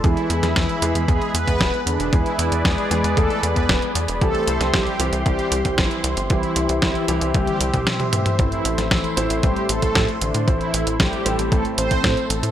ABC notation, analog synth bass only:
X:1
M:4/4
L:1/16
Q:1/4=115
K:Am
V:1 name="Analog synth bass" clef=bass
E,, z E,, E,, E,, z E,, E,, E,, z E,, E,, E,,, z E,, E,,, | E,, z E,, E,, E,, z E,, E,, E,, z E,, E,, E,,, z E,, E,,, | C,, z C,, C,, C,, z C,, C,, C,, z C,, C,, G,,, z C,, G,,, | C,, z C,, C,, C,, z C,, C,, C,, z C,, C,, z4 |
A,,, z A,,, A,,, A,,, z A,,, A,,, A,,, z A,,, A,,, A,, z A,,, A,, | A,,, z A,,, A,,, A,,, z A,,, A,,, A,,, z A,,, A,,, A,, z A,,, A,, |]